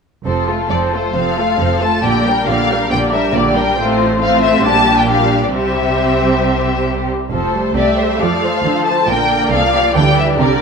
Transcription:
0.25 F1 F2 F3 C4 A4 C5
0.48 A3 F4 A4
0.69 F1 F2 F3 C4 A4 C5 D5
0.93 A3 F4 A4 C5
1.15 F1 F2 F3 C4 A4 C5 F5
1.38 A3 F4 A4
1.59 F1 F2 F3 C4 A4 C5
1.81 A3 F4 A4 A5
2.03 A#1 A#2 D3 A#3 G4 D5 G5
2.25 G3 D4 A#4
2.47 A#1 A#2 D3 A#3 G4 D5 F5
2.70 G3 D4 A#4
2.90 A#1 A#2 D3 A#3 G4 D5 G5
3.12 G3 D4 A#4 E5
3.34 A#1 A#2 D3 A#3 G4 D5
3.55 G3 D4 A#4 G5
3.77 A1 A2 A3 C4 F4 C5
4.20 A3 C4 F4 C5 F5
4.43 E5
4.64 A#1 A#2 G3 D4 G4 A5
4.99 G5
5.08 G3 D4 G4 F5
5.43 D5
5.52 C2 C3 G3 C4 G4 C5 E5
7.31 F1 F2 F3 A3 A4 C5
7.54 G3
7.75 C2 C3 G3 G4 D5 E5
7.98 C5
8.20 F2 F3 A4 D5 F5
8.42 C5
8.64 D2 D3 F3 A3 A4
8.87 C5 A5
9.09 A#1 A#2 D3 A#3 A#4 D5 G5
9.31 D3
9.52 C2 C3 F3 A4 F5
9.74 G4
9.96 D2 D3 E3 G3 G4 G5
10.18 E5
10.39 C2 C3 D3 G3 A#4 D5

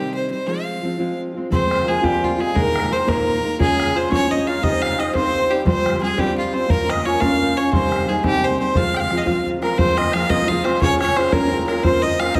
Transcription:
Already playing: C3 D#3 G3 C4 D#4 G4
0.15 C5
0.30 G3 C4 D#4 C5
0.47 F3 G#3 C4 F4 F5
0.82 F3 G#3 C4 F4
0.98 F3 G#3 C4 F4
1.34 G#3 C4 F4
1.50 F3 G#3 C4 F4 C5 C6, bodhran
1.71 A#3, bodhran
1.86 F3 G#3 C4 F4 G#4 G#5
2.02 F3 G3 G#3 C4 F4 G4 G5, bodhran
2.23 F3 F4, bodhran
2.38 G#3 C4 F4 G#4 G#5
2.54 D#2 A#2 D#3 G#3 A#3 D#4 A#4 A#5, bodhran
2.76 bodhran
2.90 D#3 G#3 A#3 C4 D#4 C5 C6
3.06 D#2 A#2 D#3 G#3 A#3 D#4 A#4 A#5, bodhran
3.28 bodhran
3.41 D#3 G#3 A#3 D#4
3.59 G#3 C#4 F4 G#4 C#5 G#5, bodhran
3.80 bodhran
3.94 C4 C#4 F4 C5 C#5 C6
4.10 C#4 F4 G#4 C#5 C#6, bodhran
4.29 D#4 D#5 D#6, bodhran
4.46 F4 G#4 C#5 F5 F6
4.62 C4 D#4 G4 C5 D#5 D#6, bodhran
4.82 F4 F5 F6, bodhran
4.97 C4 D#4 G4 C5 D#5 D#6, bodhran
5.14 C4 D#4 G4 C5 C6, bodhran
5.27 C4
5.35 bodhran
5.39 C4
5.49 G3 D#4 G4 C5
5.65 F3 G3 C4 F4 G4 C5 C6, bodhran
5.86 bodhran
6.00 G3 C4 F4 G4 G#4 G#5
6.16 F3 G3 C4 F4 G4 G5, bodhran
6.36 F3 F4 F5
6.52 C4 F4 G4 C5 C6
6.68 A#3 C#4 F4 A#4 A#5, bodhran
6.88 D#4 D#5 D#6, bodhran
7.04 A#3 C#4 F4 A#4 C#5 C#6
7.20 A#3 C#4 F4 A#4 F5 F6, bodhran
7.40 D#4, bodhran
7.56 C#4 F4 A#4 C#5 C#6
7.71 C3 D#3 G3 C4 D#4 C5 C6, bodhran
7.92 A#3, bodhran
8.07 D#3 G3 G#3 C4 D#4 G#4 G#5
8.22 C3 D#3 G3 C4 D#4 G4 G5, bodhran
8.43 C4 C5 C6, bodhran
8.59 G3 C4 D#4 C5 C6
8.75 F3 G#3 C4 F4 F5 F6, bodhran
8.94 G5, bodhran
8.99 F4 F5 F6
9.10 F3 G#3 C4 F4, bodhran
9.18 F4 D#5 F6
9.22 F4 F5
9.27 F3 G#3 C4, bodhran
9.46 bodhran
9.61 G#3 A#3 C4 F4 A#4 A#5, bodhran
9.78 F3 G#3 C4 F4 C5 C6, bodhran
9.96 G#3 C4 D#4 F4 D#5, bodhran
10.11 F3 G#3 F4 F5 G6, bodhran
10.15 C4 F4 F6
10.29 F3 G#3 C4 D#4 F4 D#5 D#6, bodhran
10.48 F3 G#3 C4 F4 F5, bodhran
10.64 G#3 C4 F4 C5 C6, bodhran
10.81 C#4 F4 G#4 C#5 C#6, bodhran
11.00 C#4 F4 G#4 C#5 C#6, bodhran
11.16 C4 C#4 F4 G#4 C5 C#5 C6, bodhran
11.32 A#3 C#4 F4 G#4 A#4 C#5 A#5, bodhran
11.51 C4 C#4 F4 G#4 C#5, bodhran
11.67 A#3 F4 G#4 A#4 C#5 A#5, bodhran
11.83 A#3 C4 C#4 F4 A#4 C5 C6, bodhran
12.02 D#4 F4 A#4 C5 D#5 D#6
12.19 C#4 F4 A#4 C5 F5 F6, bodhran
12.35 D#4 F4 A#4 C5 D#5 D#6, bodhran

